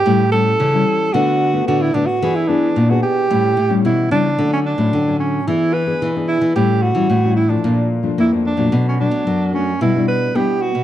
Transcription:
<<
  \new Staff \with { instrumentName = "Alto saxophone" } { \time 4/4 \key a \major \tempo 4 = 111 g'8 a'4. fis'4 fis'16 e'16 d'16 fis'16~ | fis'16 e'16 d'8. fis'16 g'4. e'8 d'8~ | \key d \major d'16 cis'16 d'4 cis'8 e'8 b'4 e'8 | g'8 fis'4 e'16 d'8. r8 e'8 d'8~ |
d'16 cis'16 d'4 cis'8 e'8 b'8 g'8 fis'8 | }
  \new Staff \with { instrumentName = "Nylon-string guitar" } { \time 4/4 \key a \major << { <g cis' e'>16 r16 <g cis' e'>8. <g cis' e'>8. <a b fis'>8. <a b fis'>8. <a b fis'>8 | <b d' gis'>8 <b d' gis'>8 r16 <b d' gis'>8. <g cis' e'>8 r16 <g cis' e'>8. <g cis' e'>16 r16 | \key d \major <fis a cis'>8. <fis a cis'>8 <fis a cis'>8. <b d' gis'>8. <b d' gis'>8 <b d' gis'>8. | <g cis' e'>8. <g cis' e'>8 <g cis' e'>8 <f a d'>4 <f a d'>8 <f a d'>8 <fis a d'>16~ |
<fis a d'>8 <fis a d'>4 <fis a d'>16 r16 <g d' e'>16 <g d' e'>8. <g d' e'>8. r16 | } \\ { a,4 e4 d4 a,4 | e4 b,4 a,4 e4 | d4 a,4 e4 b,4 | a,4 e4 bes,4 f,4 |
b,4 fis,4 b,4 b,4 | } >> }
  \new Staff \with { instrumentName = "Nylon-string guitar" } { \clef bass \time 4/4 \key a \major a,4 cis8 r8 d4 d8 d16 r16 | e4 bes,8 r8 a,8 a,8 b,8 cis8 | \key d \major d8. a,16 d4 e4 e8. e16 | a,8. e16 a,4 bes,4 bes8. bes,16 |
b,8. fis16 fis4 b,4 b8. b,16 | }
>>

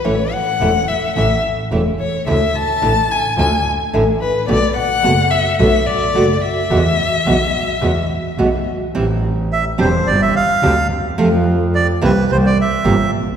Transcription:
<<
  \new Staff \with { instrumentName = "Violin" } { \time 4/4 \key e \mixolydian \tempo 4 = 108 cis''8 fis''4 e''8 e''8 r4 cis''8 | e''8 a''4 gis''8 gis''8 r4 b'8 | d''8 fis''4 e''8 e''8 d''4 e''8~ | e''2.~ e''8 r8 |
\key a \minor r1 | r1 | }
  \new Staff \with { instrumentName = "Bandoneon" } { \time 4/4 \key e \mixolydian r1 | r1 | r1 | r1 |
\key a \minor r4 e''8 c''8 d''16 e''16 f''4 r8 | r4 d''8 b'8 c''16 d''16 e''4 r8 | }
  \new Staff \with { instrumentName = "Nylon-string guitar" } { \time 4/4 \key e \mixolydian <e a cis' e'>8 r8 <e a cis' e'>8 r8 <e a cis' e'>8 r8 <e a cis' e'>8 r8 | <d a d' e'>8 r8 <d a d' e'>8 r8 <d a d' e'>8 r8 <d a d' e'>8 r8 | <b, d a b fis'>8 r8 <b, d a b fis'>8 r8 <b, d a b fis'>8 r8 <b, d a b fis'>8 r8 | <b, e gis b fis'>8 r8 <b, e gis b fis'>8 r8 <b, e gis b fis'>8 r8 <b, e gis b fis'>8 r8 |
\key a \minor <e g c' e'>8 r4 <c g c' d' g'>8 r4 <c g c' d' g'>8 r8 | <c f a c' f'>8 r4 <c e bes c' e'>8 r4 <c e bes c' e'>8 r8 | }
  \new Staff \with { instrumentName = "Double bass" } { \clef bass \time 4/4 \key e \mixolydian a,,8 r8 e,,8 r8 a,,8 r8 e,,8 r8 | d,8 r8 a,,8 r8 d,8 r8 a,,8 r8 | b,,8 r8 fis,,8 r8 b,,8 r8 fis,,8 r8 | e,8 r8 b,,8 r8 e,8 r8 b,,8 r8 |
\key a \minor a,,4. e,,8 g,,8 r8 d,8 dis,8 | f,4. c,8 c,8 r8 g,,8 bes,,8 | }
>>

